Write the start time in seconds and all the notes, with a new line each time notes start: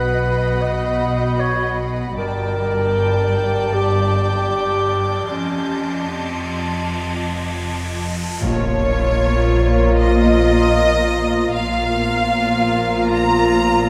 Already playing: B1 B2 F#4 B4 D#5 F#5 B5 D#6 F#6
0.62 D#5
0.70 G6
1.40 C#5
2.15 G1 G2 G4 A#4 D5 G5 A5 D6, riser
2.93 G6
3.74 G4
5.29 F1 F2 C#4 F4 D#5 A5 C6
6.07 C4
6.71 G#6
8.40 A#1 A#2 F3 A#3 F4 C#5 F5 A#5, impact
9.97 D#5
11.52 A#1 A#2 F3 A#3 F4 F5 A#5
13.10 A#5